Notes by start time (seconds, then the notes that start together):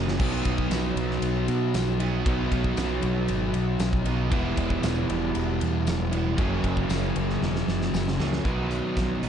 Already playing: F#1 F#2 C#3 F#3 A#3 C#4
0.08 snare
0.19 B1 B2 F#3 B3 D#4, kick, crash
0.45 B1, kick, ride
0.58 kick
0.70 B1, snare, ride, tambourine
0.95 B1, ride
1.11 snare
1.22 B1, ride
1.48 B2, ride
1.74 B1, snare, ride, tambourine
1.99 B2 F#3 B3 D#4, ride
2.25 B1 B2 F#3 B3 D#4, kick, ride
2.51 B1, kick, ride
2.64 kick
2.77 B1, snare, ride, tambourine
3.03 B1, ride
3.28 G#1, ride
3.54 B1, ride
3.80 B1, snare, ride, tambourine
3.93 kick
4.05 B1 B2 F#3 B3 D#4, ride
4.30 E1 E2 B2 E3 G3 B3 E4, kick, ride
4.57 E1, kick, ride
4.70 kick
4.83 E1, snare, ride, tambourine
5.09 E1, ride
5.35 E1, ride
5.61 E2, ride
5.86 E1, snare, ride, tambourine
6.11 E3 G3 B3 E4, ride
6.38 F#1 F#2 C#3 F#3 A#3 C#4, kick, ride
6.64 F#1, kick, ride
6.77 kick
6.89 F#1, snare, ride, tambourine
7.16 F#1, ride
7.30 snare
7.41 E1, snare
7.56 snare
7.68 F#1, snare
7.82 snare
7.94 F#1, snare, tambourine
8.08 snare
8.18 C#2 F#2 C#3 F#3 A#3 C#4, snare
8.33 snare
8.44 B1 B2 D#3 F#3 B3 D#4, kick, closed hi-hat
8.71 closed hi-hat
8.97 B1, kick, snare, closed hi-hat
9.21 B1 B2 D#3 F#3 B3 D#4, closed hi-hat